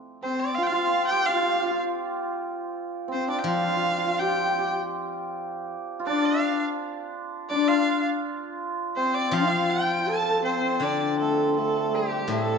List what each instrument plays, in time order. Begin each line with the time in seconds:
Already playing: hammered dulcimer A3 C4
0.23 hammered dulcimer C4, horsehead fiddle C4, erhu C5
0.40 erhu D5
0.55 horsehead fiddle F4, hammered dulcimer F4, erhu F5
0.63 erhu F5 G5
0.71 hammered dulcimer F4, horsehead fiddle F4
1.07 hammered dulcimer G4, erhu G5
1.26 hammered dulcimer F4, erhu F5
1.31 horsehead fiddle F4
1.35 hammered dulcimer F4
1.43 hammered dulcimer F4
1.49 hammered dulcimer F4
1.57 hammered dulcimer F4
1.64 hammered dulcimer F4
1.71 hammered dulcimer F4
3.08 hammered dulcimer C4, horsehead fiddle C4
3.12 erhu C5
3.28 hammered dulcimer D4, erhu D5
3.39 erhu G5
3.44 guzheng F3, hammered dulcimer F4, horsehead fiddle F4, erhu F5
3.53 hammered dulcimer F4
3.62 hammered dulcimer F4
3.69 hammered dulcimer F4
3.77 hammered dulcimer F4
3.83 hammered dulcimer F4
3.91 hammered dulcimer F4
3.98 hammered dulcimer F4
4.07 hammered dulcimer F4
4.19 hammered dulcimer G4, horsehead fiddle G4, erhu G5
4.28 hammered dulcimer G4
4.34 hammered dulcimer G4
4.43 hammered dulcimer G4
4.49 hammered dulcimer G4
4.59 hammered dulcimer G4
4.67 hammered dulcimer G4
6.00 hammered dulcimer F4
6.06 hammered dulcimer D4, horsehead fiddle D4, erhu D5
6.26 erhu F5
7.50 hammered dulcimer D4, horsehead fiddle D4, erhu D5
7.68 hammered dulcimer F4, erhu F5
8.96 hammered dulcimer C4, horsehead fiddle C4, erhu C5
9.15 erhu D5
9.31 guzheng F3, horsehead fiddle F4, hammered dulcimer F4, erhu F5
9.70 erhu G5
10.07 horsehead fiddle A4, hammered dulcimer A4, erhu A5
10.44 horsehead fiddle C4, hammered dulcimer C4, erhu C5
10.80 guzheng D3, horsehead fiddle D4, hammered dulcimer D4, erhu D5
11.19 hammered dulcimer A3, erhu A4
11.57 horsehead fiddle A3, hammered dulcimer A3, erhu A4
11.88 hammered dulcimer A3
11.94 hammered dulcimer G3, erhu G4
12.28 guzheng A2, horsehead fiddle A3, hammered dulcimer A3, erhu A4